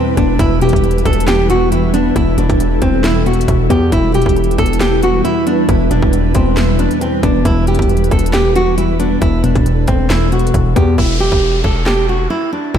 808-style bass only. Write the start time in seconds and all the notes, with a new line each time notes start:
0.17 E1
0.39 E1
0.73 E1
1.05 E1
2.16 E1
2.38 E1
2.50 E1
2.82 E1
3.48 E1
3.70 E2
3.92 E1
4.26 E1
4.58 E1
5.69 E1
5.91 E1
6.02 E1
6.35 E1
7.23 E1
7.45 E1
7.79 E1
8.11 E1
9.22 E1
9.44 E1
9.55 E1
9.88 E1
10.54 E1
10.76 E2
10.98 E1
11.32 E1
11.64 E1
12.75 E1